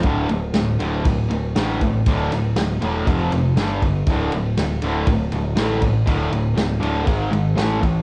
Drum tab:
RD |xxxxxxxx|xxxxxxxx|xxxxxxxx|xxxxxxxx|
SD |--o---o-|-oo---o-|--o---o-|--o---o-|
BD |o---o--o|o---o--o|o---o--o|o---o--o|